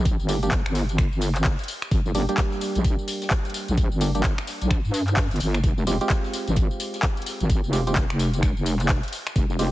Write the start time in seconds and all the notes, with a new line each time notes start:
Already playing: A#1 G3 A#3 D4 G4
0.05 kick, closed hi-hat, tambourine
0.19 G1, tambourine
0.29 G3 A#3 D4 G4, closed hi-hat, open hi-hat, tambourine
0.43 G3 A#3 D4 G4, closed hi-hat, tambourine
0.51 G1, kick, snare, clap, closed hi-hat, tambourine
0.66 G1, finger snap, tambourine
0.75 closed hi-hat, open hi-hat, tambourine
0.89 closed hi-hat, tambourine
0.98 finger snap, kick, closed hi-hat, tambourine
1.12 G1, tambourine
1.21 closed hi-hat, open hi-hat, tambourine
1.35 clap, closed hi-hat, tambourine
1.44 kick, snare, clap, closed hi-hat, open hi-hat, tambourine
1.59 closed hi-hat, tambourine
1.64 closed hi-hat
1.68 closed hi-hat, open hi-hat, tambourine
1.82 finger snap, closed hi-hat, tambourine
1.91 G1, kick, closed hi-hat, tambourine
2.06 tambourine
2.15 G3 A#3 D4 G4, closed hi-hat, open hi-hat, tambourine
2.29 G3 A#3 D4 G4, closed hi-hat, tambourine
2.37 kick, snare, clap, closed hi-hat, tambourine
2.52 snare, tambourine
2.61 closed hi-hat, open hi-hat, tambourine
2.75 A#1, closed hi-hat, tambourine
2.84 kick, closed hi-hat, tambourine
2.99 tambourine
3.08 closed hi-hat, open hi-hat, tambourine
3.22 snare, closed hi-hat, tambourine
3.30 kick, snare, clap, closed hi-hat, tambourine
3.45 closed hi-hat, tambourine
3.50 closed hi-hat
3.54 closed hi-hat, open hi-hat, tambourine
3.68 A#1, closed hi-hat, tambourine
3.77 kick, closed hi-hat, tambourine
3.92 G1, tambourine
4.01 G3 A#3 D4 G4, closed hi-hat, open hi-hat, tambourine
4.15 G3 A#3 D4 G4, closed hi-hat, tambourine
4.24 G1, kick, snare, clap, closed hi-hat, tambourine
4.38 finger snap, tambourine
4.47 closed hi-hat, open hi-hat, tambourine
4.61 A#1, closed hi-hat, tambourine
4.71 finger snap, kick, closed hi-hat, tambourine
4.85 G2, tambourine
4.94 closed hi-hat, open hi-hat, tambourine
5.07 clap, closed hi-hat, tambourine
5.16 kick, snare, clap, closed hi-hat, open hi-hat, tambourine
5.31 G1, closed hi-hat, tambourine
5.36 closed hi-hat
5.40 G1, closed hi-hat, open hi-hat, tambourine
5.54 finger snap, closed hi-hat, tambourine
5.64 F1, kick, closed hi-hat, tambourine
5.78 tambourine
5.87 G#3 C4 F4 G4, closed hi-hat, open hi-hat, tambourine
6.01 G#3 C4 F4 G4, closed hi-hat, tambourine
6.10 kick, snare, clap, closed hi-hat, tambourine
6.24 snare, tambourine
6.33 closed hi-hat, open hi-hat, tambourine
6.47 G#1, closed hi-hat, tambourine
6.56 kick, closed hi-hat, tambourine
6.71 tambourine
6.80 closed hi-hat, open hi-hat, tambourine
6.93 snare, closed hi-hat, tambourine
7.03 kick, snare, clap, closed hi-hat, tambourine
7.17 closed hi-hat, tambourine
7.22 closed hi-hat
7.26 closed hi-hat, open hi-hat, tambourine
7.40 G#1, closed hi-hat, tambourine
7.50 kick, closed hi-hat, tambourine
7.64 F1, tambourine
7.73 G#3 C4 F4 G4, closed hi-hat, open hi-hat, tambourine
7.87 G#3 C4 F4 G4, closed hi-hat, tambourine
7.96 F1, kick, snare, clap, closed hi-hat, tambourine
8.10 F1, finger snap, tambourine
8.19 closed hi-hat, open hi-hat, tambourine
8.34 closed hi-hat, tambourine
8.43 finger snap, kick, closed hi-hat, tambourine
8.57 F1, tambourine
8.66 closed hi-hat, open hi-hat, tambourine
8.79 clap, closed hi-hat, tambourine
8.88 kick, snare, clap, closed hi-hat, open hi-hat, tambourine
9.03 closed hi-hat, tambourine
9.08 closed hi-hat
9.13 closed hi-hat, open hi-hat, tambourine
9.27 finger snap, closed hi-hat, tambourine
9.36 F1, kick, closed hi-hat, tambourine
9.50 tambourine
9.59 G#3 C4 F4 G4, closed hi-hat, open hi-hat, tambourine